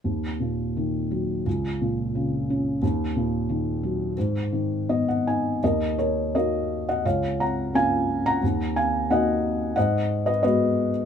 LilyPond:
<<
  \new Staff \with { instrumentName = "Felt piano" } { \time 4/4 \key ees \minor \tempo 4 = 87 r1 | r2. ees''16 ges''16 aes''8 | <bes' ees''>8 <bes' des''>8 <bes' ees''>8. <ees'' ges''>16 <des'' f''>8 <ges'' bes''>8 <f'' aes''>8. <ges'' bes''>16~ | <ges'' bes''>8 <f'' aes''>8 <ees'' ges''>4 <ees'' ges''>8. <ces'' ees''>16 <ces'' ees''>8. r16 | }
  \new Staff \with { instrumentName = "Felt piano" } { \clef bass \time 4/4 \key ees \minor ees,8 bes,8 ees8 ges8 des,8 bes,8 des8 des'8 | ees,8 bes,8 ees8 ges8 aes,8 ees8 ces'8 ees'8 | ees,4 <bes ees' ges'>4 des,4 <bes des' f'>4 | ees,4 <bes ees' ges'>4 aes,4 <aes ces' ges'>4 | }
>>